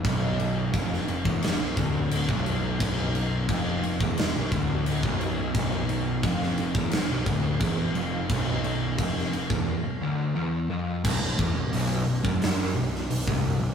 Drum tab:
CC |x-x-x-x-x-x-x-x-|x-x-x-x-x-x-x-x-|x-x-x-x-x-x-x-x-|x-x-x-x---------|
HH |----------------|----------------|----------------|----------------|
SD |-----o--o-------|--------o-------|-----o--o-------|-----o----------|
BD |o---o--o--o--o--|o---o--o--o--o--|o---o--o--o-o---|o---o--o--------|

CC |x---------------|
HH |----o---o---o---|
SD |--------o--o----|
BD |o-o----o-----o--|